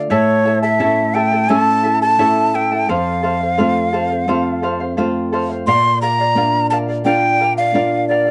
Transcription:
0.00 0.11 D5 soft
0.00 0.10 F5 soft
0.10 2.84 A2 medium
0.10 0.44 E4 medium
0.10 0.45 A4 medium
0.10 0.45 C#5 medium
0.10 0.59 C#5 medium
0.10 0.44 E5 medium
0.10 0.46 A5 medium
0.45 0.63 E4 medium
0.45 0.62 A4 soft
0.45 0.63 E5 medium
0.45 0.61 A5 medium
0.62 0.79 E4 soft
0.62 0.79 A4 soft
0.62 1.16 E5 medium
0.62 0.79 A5 soft
0.79 1.47 A3 soft
0.79 1.47 C#4 soft
0.79 1.48 E4 soft
0.79 1.14 E4 medium
0.79 1.14 A4 medium
0.79 1.15 C#5 medium
0.79 1.14 E5 medium
0.79 1.15 A5 medium
1.14 1.32 E4 medium
1.14 1.32 A4 medium
1.14 1.32 E5 medium
1.14 1.51 G5 medium
1.14 1.31 A5 medium
1.32 1.49 E4 soft
1.32 1.49 A4 soft
1.32 1.49 A5 soft
1.49 2.17 A3 soft
1.49 2.17 C#4 soft
1.49 1.83 E4 medium
1.49 2.17 E4 soft
1.49 1.84 A4 medium
1.49 1.84 C#5 medium
1.49 1.82 E5 medium
1.49 2.01 A5 medium
1.49 1.84 A5 medium
1.83 2.02 E4 soft
1.83 2.02 A4 soft
1.83 2.01 E5 soft
1.83 2.01 A5 medium
2.02 2.18 E4 soft
2.02 2.19 A4 soft
2.02 2.57 A5 medium
2.02 2.19 A5 soft
2.18 2.86 A3 soft
2.18 2.86 C#4 soft
2.18 2.87 E4 soft
2.18 2.54 E4 medium
2.18 2.54 A4 medium
2.18 2.54 C#5 medium
2.18 2.53 E5 medium
2.18 2.54 A5 medium
2.54 2.72 E4 medium
2.54 2.71 A4 medium
2.54 2.71 E5 medium
2.54 2.91 G5 medium
2.54 2.71 A5 medium
2.72 2.90 E4 soft
2.72 2.87 A4 soft
2.72 2.89 A5 soft
2.89 5.63 F2 medium
2.89 3.22 A4 medium
2.89 3.22 C5 medium
2.89 3.23 F5 medium
2.89 4.97 F5 medium
3.23 3.40 A4 medium
3.23 3.40 C5 medium
3.23 3.40 F5 medium
3.41 3.57 C5 soft
3.41 3.57 F5 soft
3.58 4.26 A3 soft
3.58 4.26 C4 soft
3.58 4.26 F4 medium
3.58 3.92 A4 medium
3.58 3.93 C5 medium
3.58 3.93 F5 medium
3.93 4.10 A4 medium
3.93 4.10 C5 medium
3.93 4.09 F5 medium
4.10 4.27 C5 soft
4.10 4.27 F5 soft
4.28 4.95 A3 soft
4.28 4.95 C4 soft
4.28 4.95 F4 soft
4.28 4.61 A4 medium
4.28 4.62 C5 medium
4.28 4.62 F5 medium
4.62 4.80 A4 medium
4.62 4.80 C5 medium
4.62 4.79 F5 medium
4.80 4.97 C5 soft
4.80 4.97 F5 soft
4.97 5.65 A3 soft
4.97 5.65 C4 soft
4.97 5.65 F4 soft
4.97 5.31 A4 medium
4.97 5.32 C5 medium
4.97 5.32 F5 medium
5.32 5.49 A4 medium
5.32 5.49 C5 medium
5.32 5.49 F5 medium
5.50 5.68 C5 soft
5.50 5.67 F5 soft
5.67 8.31 A#2 medium
5.67 6.01 A#4 medium
5.67 6.01 D5 medium
5.67 6.02 F5 medium
5.67 5.99 C6 loud
6.02 6.19 A#4 medium
6.02 6.19 D5 medium
6.02 6.18 F5 medium
6.02 6.67 A#5 medium
6.19 6.36 D5 soft
6.19 6.36 F5 soft
6.35 7.03 A#3 soft
6.35 7.03 D4 soft
6.35 7.03 F4 medium
6.35 6.70 A#4 medium
6.35 6.71 D5 medium
6.35 6.71 F5 medium
6.70 6.88 A#4 medium
6.70 6.88 D5 medium
6.70 6.87 F5 medium
6.70 6.78 A5 medium
6.88 7.05 D5 soft
6.88 7.05 F5 soft
7.04 7.72 A#3 soft
7.04 7.72 D4 soft
7.04 7.73 F4 soft
7.04 7.39 A#4 medium
7.04 7.40 D5 medium
7.04 7.41 F5 medium
7.04 7.53 G5 medium
7.41 7.58 A#4 medium
7.41 7.58 D5 medium
7.41 7.57 F5 medium
7.57 7.74 D5 soft
7.57 8.06 F5 medium
7.57 7.74 F5 soft
7.74 8.31 A#3 soft
7.74 8.31 D4 soft
7.74 8.31 F4 soft
7.74 8.09 A#4 medium
7.74 8.10 D5 medium
7.74 8.10 F5 medium
8.08 8.27 A#4 soft
8.08 8.31 D5 medium
8.08 8.27 D5 medium
8.08 8.25 F5 medium
8.27 8.31 F5 soft

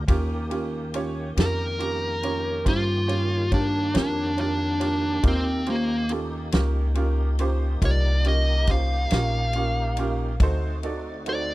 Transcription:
0.08 1.34 D#2 medium
0.08 5.21 D#3 medium
0.08 5.21 A#3 medium
0.08 0.40 C#4 medium
0.08 0.41 F4 medium
0.08 0.41 G4 medium
0.08 5.21 G4 medium
0.08 0.41 A#4 medium
0.08 kick loud
0.08 ride medium
0.50 0.83 C#4 medium
0.50 0.83 F4 medium
0.50 0.83 G4 medium
0.50 0.84 A#4 medium
0.50 ride medium
0.94 1.27 C#4 medium
0.94 1.27 F4 medium
0.94 1.27 G4 medium
0.94 1.27 C#5 medium
0.94 ride medium
1.36 2.62 F2 medium
1.36 1.69 C#4 soft
1.36 1.70 F4 soft
1.36 1.70 G4 soft
1.36 1.70 A#4 medium
1.36 snare loud
1.36 ride medium
1.41 2.64 A#4 medium
1.79 2.12 C#4 soft
1.79 2.12 F4 soft
1.79 2.12 G4 soft
1.79 2.13 A#4 medium
1.79 ride medium
2.22 2.55 C#4 medium
2.22 2.56 F4 medium
2.22 2.56 G4 soft
2.22 2.56 C#5 medium
2.22 ride medium
2.64 3.91 G2 medium
2.64 2.98 C#4 medium
2.64 2.98 F4 soft
2.64 2.98 G4 soft
2.64 2.98 C5 medium
2.64 kick medium
2.64 ride medium
2.68 3.51 F4 medium
3.07 3.40 C#4 medium
3.07 3.41 F4 soft
3.07 3.41 G4 soft
3.07 3.41 C#5 medium
3.07 ride medium
3.51 3.95 D4 medium
3.51 3.84 F4 soft
3.51 3.85 G4 soft
3.51 3.85 A#4 medium
3.51 3.84 C#5 medium
3.51 kick medium
3.51 ride medium
3.94 5.20 F2 medium
3.94 4.38 D4 medium
3.94 4.27 F4 medium
3.94 4.28 G4 medium
3.94 4.28 A#4 medium
3.94 4.27 C#5 medium
3.94 snare medium
3.94 ride medium
4.37 5.23 D4 medium
4.37 4.70 F4 soft
4.37 4.71 G4 soft
4.37 4.71 A#4 medium
4.37 4.70 C#5 soft
4.37 ride medium
4.80 5.13 F4 soft
4.80 5.13 G4 soft
4.80 5.14 A#4 medium
4.80 5.13 C#5 soft
4.80 ride medium
5.23 6.49 D#2 medium
5.23 10.36 A#3 medium
5.23 5.56 D#4 medium
5.23 10.36 D#4 medium
5.23 5.56 F4 medium
5.23 10.36 G4 medium
5.23 5.56 G4 medium
5.23 5.57 A#4 medium
5.23 kick loud
5.23 ride medium
5.28 5.68 C4 medium
5.66 5.99 C#4 medium
5.66 5.99 F4 soft
5.66 6.00 G4 soft
5.66 6.00 C5 medium
5.66 ride medium
5.70 6.10 A#3 loud
6.09 6.42 C#4 medium
6.09 6.42 F4 soft
6.09 6.43 G4 soft
6.09 6.43 A4 medium
6.09 ride medium
6.52 7.78 C#2 medium
6.52 6.85 C#4 medium
6.52 6.85 F4 medium
6.52 6.86 G4 medium
6.52 6.86 A#4 medium
6.52 snare loud
6.52 ride medium
6.95 7.28 C#4 medium
6.95 7.28 F4 medium
6.95 7.28 G4 medium
6.95 7.29 A#4 medium
6.95 ride medium
7.39 7.71 C#4 medium
7.39 7.72 F4 medium
7.39 7.72 G4 medium
7.39 7.72 C5 medium
7.39 ride medium
7.82 9.07 C2 medium
7.82 8.15 D#4 medium
7.82 8.15 F4 medium
7.82 8.15 G4 soft
7.82 8.15 A#4 medium
7.82 8.26 D5 loud
7.82 kick medium
7.82 ride medium
8.24 8.57 C#4 medium
8.24 8.58 F4 soft
8.24 8.58 G4 medium
8.24 8.58 A#4 medium
8.24 ride medium
8.28 8.69 D#5 medium
8.67 9.00 C#4 soft
8.67 9.01 F4 medium
8.67 9.01 G4 soft
8.67 9.02 C5 medium
8.67 10.38 F5 medium
8.67 kick medium
8.67 snare soft
8.67 ride medium
9.10 10.37 A#1 medium
9.10 9.44 C#4 medium
9.10 9.44 F4 medium
9.10 9.44 G4 medium
9.10 9.45 A#4 medium
9.10 snare loud
9.10 ride medium
9.53 9.87 C#4 medium
9.53 9.87 F4 soft
9.53 9.88 G4 soft
9.53 9.88 A#4 medium
9.53 ride medium
9.97 10.30 C#4 medium
9.97 10.30 F4 medium
9.97 10.31 G4 medium
9.97 10.31 A#4 medium
9.97 ride medium
10.40 11.54 D2 medium
10.40 11.54 A3 medium
10.40 11.54 C4 medium
10.40 10.73 D#4 medium
10.40 11.54 D#4 medium
10.40 11.54 F#4 medium
10.40 10.73 F#4 medium
10.40 10.74 A4 medium
10.40 10.74 C5 medium
10.40 kick loud
10.40 ride medium
10.83 11.16 D#4 medium
10.83 11.16 F#4 medium
10.83 11.16 A4 medium
10.83 11.17 D5 medium
10.83 ride medium
11.26 11.54 D#4 medium
11.26 11.54 F#4 soft
11.26 11.54 A4 medium
11.26 11.54 C5 medium
11.26 11.54 D5 medium
11.26 ride medium

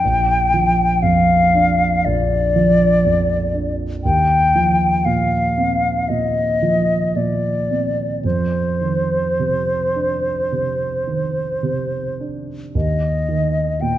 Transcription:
0.00 1.04 G5 soft
0.05 2.01 A#1 soft
0.54 1.33 F3 soft
1.02 1.84 F2 soft
1.02 2.06 F5 soft
1.55 2.36 D4 soft
2.05 4.00 A#1 soft
2.05 3.77 D5 medium
2.56 3.34 F3 soft
3.05 3.84 F2 soft
3.54 4.04 D4 soft
4.04 6.05 D#2 soft
4.04 5.07 G5 medium
4.55 5.36 F3 soft
5.05 5.88 A#2 soft
5.05 6.10 F5 soft
5.58 6.41 C4 soft
6.09 6.94 A#2 soft
6.09 7.18 D#5 medium
6.62 7.48 F3 soft
7.16 8.02 A#2 soft
7.16 8.24 D5 soft
7.71 8.25 C4 soft
8.24 10.48 F2 soft
8.24 12.15 C5 soft
8.81 9.73 D#3 soft
9.39 10.30 C3 soft
9.96 10.85 D4 soft
10.52 11.41 C3 soft
11.07 11.96 D#3 soft
11.63 12.52 C3 soft
12.20 12.75 D4 soft
12.75 13.98 D#2 soft
12.75 13.83 D#5 soft
13.28 13.98 D#3 soft
13.81 13.98 A#2 soft
13.81 13.98 G5 soft

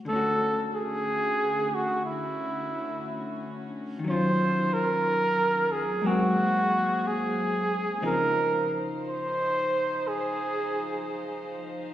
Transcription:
0.03 3.99 D3 soft
0.03 3.98 A3 soft
0.03 5.97 C#4 soft
0.03 3.99 F#4 medium
0.08 4.04 A3 soft
0.08 0.69 A4 medium
0.13 4.07 C#4 soft
0.13 4.09 F#4 soft
0.75 1.76 G#4 medium
1.75 2.05 F#4 medium
2.06 3.66 E4 medium
3.99 6.00 D#3 soft
3.99 5.99 D#3 medium
3.99 7.96 F#3 soft
3.99 5.99 F4 medium
4.04 6.03 F#3 soft
4.04 6.04 C#4 soft
4.09 6.06 F4 soft
4.09 4.75 C5 medium
4.74 5.73 A#4 medium
5.72 6.09 G#4 medium
6.02 8.01 G#2 soft
6.02 8.02 F#3 soft
6.02 7.99 A#3 soft
6.02 8.02 A#3 soft
6.02 7.99 C4 medium
6.02 7.99 G#4 medium
6.06 8.01 C4 soft
6.06 7.09 F#4 medium
7.07 8.04 G#4 medium
8.02 11.94 C#3 soft
8.02 11.94 F3 medium
8.02 11.94 F3 soft
8.02 11.94 C4 soft
8.02 11.94 D#4 medium
8.02 11.94 D#4 soft
8.02 11.94 C5 medium
8.06 8.81 A#4 medium
9.09 10.09 C5 medium
10.07 11.70 G#4 medium

